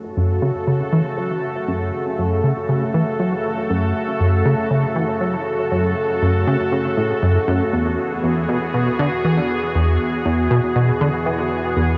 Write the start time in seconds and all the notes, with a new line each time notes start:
Already playing: F#2 C#3 A3 F#4 A4
0.17 F#2
0.42 C#3
0.67 C#3
0.92 E3
1.17 F#3
1.68 F#2
2.18 F#2
2.43 C#3
2.69 C#3
2.94 E3
3.19 F#3
3.70 F#2
4.20 F#2
4.45 C#3
4.71 C#3
4.96 E3
5.21 F#3
5.71 F#2
6.22 F#2
6.47 C#3
6.72 C#3
6.97 A2
7.22 F#2
7.48 F#2
7.73 E2 E3 B3 G#4
8.23 E2
8.49 B2
8.74 B2
8.99 D3
9.24 E3
9.75 E2
10.25 E2
10.51 B2
10.75 B2
11.01 D3
11.26 E3
11.76 E2